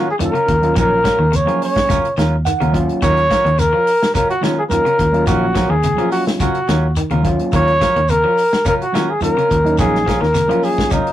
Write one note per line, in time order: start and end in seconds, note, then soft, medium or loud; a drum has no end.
0.00 0.12 D#3 medium
0.10 0.15 G#4 medium
0.19 0.30 D#3 medium
0.19 0.32 F#3 medium
0.19 0.33 A#3 medium
0.19 0.33 C#4 medium
0.19 0.33 F4 medium
0.19 closed hi-hat medium
0.19 shekere medium
0.25 0.75 A#4 medium
0.33 0.54 C#3 medium
0.33 0.51 C#4 soft
0.33 0.51 F4 soft
0.33 0.51 A#4 soft
0.33 closed hi-hat soft
0.47 0.75 D#2 medium
0.47 0.54 C#4 medium
0.47 0.55 F4 medium
0.47 kick medium
0.47 closed hi-hat medium
0.47 shekere soft
0.61 0.99 F#3 medium
0.61 0.99 A#3 medium
0.61 1.00 C#4 medium
0.61 1.00 F4 medium
0.61 closed hi-hat soft
0.75 1.17 A#1 medium
0.75 0.96 D#3 medium
0.75 0.93 F#3 medium
0.75 0.94 C#4 medium
0.75 0.94 F4 medium
0.75 0.94 A#4 medium
0.75 kick medium
0.75 closed hi-hat medium
0.75 shekere medium
0.80 1.37 A#4 loud
1.03 1.15 F3 medium
1.03 1.21 F#3 medium
1.03 1.21 C#4 medium
1.03 1.22 F4 medium
1.03 1.22 A#4 medium
1.03 kick medium
1.03 snare medium
1.03 closed hi-hat soft
1.03 shekere soft
1.19 1.46 D#2 medium
1.19 1.29 D#3 medium
1.32 1.43 C#3 medium
1.32 1.62 C#5 medium
1.32 closed hi-hat medium
1.32 shekere medium
1.45 1.68 F3 medium
1.45 1.96 F#3 medium
1.45 1.96 A#3 medium
1.45 1.97 C#4 medium
1.45 1.64 F4 soft
1.45 1.97 G#4 medium
1.45 1.64 A#4 soft
1.45 closed hi-hat soft
1.62 2.15 C#5 medium
1.62 open hi-hat medium
1.62 shekere soft
1.76 kick medium
1.76 snare medium
1.88 2.10 C#3 medium
1.88 2.06 F#3 medium
1.88 2.06 C#4 medium
1.88 2.07 F4 medium
1.88 2.07 A#4 medium
1.88 kick medium
1.88 snare soft
1.88 closed hi-hat medium
1.88 shekere medium
2.05 closed hi-hat soft
2.17 2.44 D#2 medium
2.17 2.38 D#3 medium
2.17 2.35 F#3 medium
2.17 2.35 C#4 medium
2.17 2.35 F4 medium
2.17 2.35 A#4 medium
2.17 snare medium
2.17 closed hi-hat soft
2.17 shekere soft
2.45 2.57 D#3 medium
2.45 2.98 F#5 medium
2.45 closed hi-hat medium
2.45 shekere medium
2.60 2.88 D#2 medium
2.60 2.81 C#3 medium
2.60 2.77 C#4 soft
2.60 2.77 F4 soft
2.60 2.77 A#4 medium
2.60 closed hi-hat soft
2.72 3.23 F#3 medium
2.72 3.23 A#3 medium
2.72 3.24 C#4 medium
2.72 3.24 F4 medium
2.72 kick medium
2.72 closed hi-hat soft
2.72 shekere soft
2.89 closed hi-hat soft
3.02 3.29 D#2 medium
3.02 3.23 D#3 medium
3.02 3.19 F#3 medium
3.02 3.20 C#4 medium
3.02 3.20 F4 medium
3.02 3.20 A#4 medium
3.02 3.61 C#5 loud
3.02 kick medium
3.02 closed hi-hat medium
3.02 shekere medium
3.17 closed hi-hat soft
3.30 3.41 F3 medium
3.30 3.48 F#3 medium
3.30 3.48 C#4 medium
3.30 3.48 F4 medium
3.30 3.48 A#4 medium
3.30 kick medium
3.30 snare medium
3.30 closed hi-hat soft
3.30 shekere soft
3.45 3.71 D#2 medium
3.45 3.55 D#3 medium
3.45 closed hi-hat soft
3.58 3.69 C#3 medium
3.58 4.13 A#4 loud
3.58 snare soft
3.58 closed hi-hat medium
3.58 shekere medium
3.73 3.93 F3 medium
3.73 3.90 C#4 soft
3.73 3.90 F4 soft
3.73 3.89 A#4 medium
3.87 open hi-hat medium
3.87 shekere soft
4.02 snare medium
4.02 closed hi-hat soft
4.14 4.36 C#3 medium
4.14 4.32 F#3 medium
4.14 4.32 C#4 medium
4.14 4.32 F4 medium
4.14 4.28 A#4 medium
4.14 4.32 A#4 medium
4.14 kick medium
4.14 closed hi-hat medium
4.14 shekere medium
4.30 4.42 F#4 medium
4.30 closed hi-hat soft
4.41 4.63 D#3 medium
4.41 4.55 F#3 medium
4.41 4.60 F#3 medium
4.41 4.55 A#3 medium
4.41 4.60 C#4 medium
4.41 4.56 C#4 medium
4.41 4.61 F4 medium
4.41 4.56 F4 medium
4.41 4.61 A#4 medium
4.41 snare medium
4.41 closed hi-hat soft
4.41 shekere soft
4.58 4.64 G#4 medium
4.69 4.82 D#3 medium
4.69 4.83 F#3 medium
4.69 4.84 A#3 medium
4.69 4.84 C#4 medium
4.69 4.84 F4 medium
4.69 5.23 A#4 medium
4.69 closed hi-hat medium
4.69 shekere medium
4.85 5.06 C#3 medium
4.85 5.02 C#4 soft
4.85 5.02 F4 soft
4.85 5.02 A#4 soft
4.85 closed hi-hat soft
4.98 5.26 D#2 medium
4.98 5.05 C#4 medium
4.98 5.06 F4 medium
4.98 kick medium
4.98 closed hi-hat medium
4.98 shekere soft
5.12 5.50 F#3 medium
5.12 5.50 A#3 medium
5.12 5.51 C#4 medium
5.12 5.51 F4 medium
5.12 closed hi-hat soft
5.26 5.68 A#1 medium
5.26 5.48 D#3 medium
5.26 5.44 F#3 medium
5.26 5.45 C#4 medium
5.26 5.45 F4 medium
5.26 5.71 F#4 medium
5.26 5.45 A#4 medium
5.26 kick medium
5.26 snare soft
5.26 closed hi-hat medium
5.26 shekere medium
5.55 5.66 F3 medium
5.55 5.73 F#3 medium
5.55 5.73 C#4 medium
5.55 5.73 F4 medium
5.55 5.74 A#4 medium
5.55 kick medium
5.55 snare medium
5.55 closed hi-hat medium
5.55 shekere soft
5.68 5.96 D#2 medium
5.68 5.80 D#3 medium
5.68 6.11 G#4 medium
5.83 5.95 C#3 medium
5.83 closed hi-hat medium
5.83 shekere medium
5.96 6.19 F3 medium
5.96 6.47 F#3 medium
5.96 6.47 A#3 medium
5.96 6.48 C#4 medium
5.96 6.16 C#4 soft
5.96 6.48 F4 medium
5.96 6.15 F4 soft
5.96 6.15 A#4 soft
5.96 closed hi-hat soft
6.12 6.25 F#4 medium
6.12 open hi-hat medium
6.12 shekere soft
6.27 snare medium
6.40 6.61 C#3 medium
6.40 6.58 F#3 medium
6.40 6.58 C#4 medium
6.40 6.58 F4 medium
6.40 6.93 F#4 medium
6.40 6.58 A#4 medium
6.40 kick medium
6.40 snare soft
6.40 closed hi-hat medium
6.40 shekere medium
6.55 closed hi-hat soft
6.68 6.95 D#2 medium
6.68 6.89 D#3 medium
6.68 6.86 F#3 medium
6.68 6.86 C#4 medium
6.68 6.86 F4 medium
6.68 6.86 A#4 medium
6.68 snare medium
6.68 closed hi-hat soft
6.68 shekere soft
6.96 7.07 D#3 medium
6.96 closed hi-hat medium
6.96 shekere medium
7.10 7.38 D#2 medium
7.10 7.32 C#3 medium
7.10 7.28 C#4 soft
7.10 7.28 F4 medium
7.10 7.28 A#4 medium
7.10 closed hi-hat soft
7.22 7.74 F#3 medium
7.22 7.74 A#3 medium
7.22 7.75 C#4 medium
7.22 7.75 F4 medium
7.22 kick medium
7.22 closed hi-hat soft
7.22 shekere soft
7.39 closed hi-hat soft
7.52 7.80 D#2 medium
7.52 7.74 D#3 medium
7.52 7.70 F#3 medium
7.52 7.70 C#4 medium
7.52 7.71 F4 medium
7.52 7.71 A#4 medium
7.52 8.11 C#5 loud
7.52 kick medium
7.52 closed hi-hat medium
7.52 shekere medium
7.68 closed hi-hat soft
7.81 7.92 F3 medium
7.81 7.98 F#3 medium
7.81 7.98 C#4 medium
7.81 7.99 F4 medium
7.81 7.99 A#4 medium
7.81 kick medium
7.81 snare medium
7.81 closed hi-hat soft
7.81 shekere soft
7.96 8.23 D#2 medium
7.96 8.06 D#3 medium
7.96 closed hi-hat soft
8.08 8.21 C#3 medium
8.08 8.66 A#4 loud
8.08 closed hi-hat medium
8.08 shekere medium
8.24 8.44 F3 medium
8.24 8.41 C#4 soft
8.24 8.41 F4 soft
8.24 8.40 A#4 soft
8.38 open hi-hat medium
8.38 shekere soft
8.53 snare medium
8.53 closed hi-hat soft
8.65 8.86 C#3 medium
8.65 8.83 F#3 medium
8.65 8.83 C#4 medium
8.65 8.83 F4 medium
8.65 8.83 A#4 medium
8.65 8.74 A#4 medium
8.65 kick medium
8.65 closed hi-hat medium
8.65 shekere medium
8.82 9.11 F#4 medium
8.82 closed hi-hat soft
8.93 9.15 D#3 medium
8.93 9.06 F#3 medium
8.93 9.11 F#3 medium
8.93 9.06 A#3 medium
8.93 9.11 C#4 medium
8.93 9.07 C#4 medium
8.93 9.12 F4 medium
8.93 9.07 F4 medium
8.93 9.12 A#4 medium
8.93 snare medium
8.93 closed hi-hat soft
8.93 shekere soft
9.10 9.23 G#4 medium
9.20 9.33 D#3 medium
9.20 9.34 F#3 medium
9.20 9.35 A#3 medium
9.20 9.35 C#4 medium
9.20 9.35 F4 medium
9.20 9.75 A#4 medium
9.20 closed hi-hat medium
9.20 shekere medium
9.37 9.57 C#3 medium
9.37 9.54 C#4 soft
9.37 9.54 F4 soft
9.37 9.53 A#4 medium
9.37 closed hi-hat soft
9.49 9.77 D#2 medium
9.49 9.56 C#4 medium
9.49 9.57 F4 medium
9.49 kick medium
9.49 closed hi-hat medium
9.49 shekere soft
9.64 10.01 F#3 medium
9.64 10.02 A#3 medium
9.64 10.02 C#4 medium
9.64 10.02 D#4 medium
9.64 closed hi-hat soft
9.78 10.20 A#1 medium
9.78 9.99 D#3 medium
9.78 9.96 F#3 medium
9.78 9.97 C#4 medium
9.78 9.97 F4 medium
9.78 10.23 G#4 medium
9.78 9.97 A#4 medium
9.78 kick medium
9.78 snare soft
9.78 closed hi-hat medium
9.78 shekere medium
9.95 snare soft
10.06 10.17 F3 medium
10.06 10.25 C#4 medium
10.06 10.25 F4 medium
10.06 10.25 A#4 medium
10.06 kick medium
10.06 snare medium
10.06 closed hi-hat soft
10.06 shekere soft
10.21 10.48 D#2 medium
10.21 10.31 D#3 medium
10.21 10.65 A#4 medium
10.21 snare soft
10.34 10.45 C#3 medium
10.34 snare soft
10.34 closed hi-hat medium
10.34 shekere medium
10.48 10.70 F3 medium
10.48 10.98 F#3 medium
10.48 10.98 A#3 medium
10.48 10.99 C#4 medium
10.48 10.67 C#4 soft
10.48 10.99 F4 medium
10.48 10.67 F4 soft
10.48 10.66 A#4 soft
10.48 closed hi-hat soft
10.63 10.93 G#4 medium
10.63 open hi-hat medium
10.63 shekere soft
10.78 kick medium
10.78 snare medium
10.91 11.12 C#3 medium
10.91 11.08 F#3 medium
10.91 11.08 C#4 medium
10.91 11.13 D#4 medium
10.91 11.09 F4 medium
10.91 11.09 A#4 medium
10.91 kick medium
10.91 closed hi-hat medium
10.91 shekere medium
11.07 closed hi-hat soft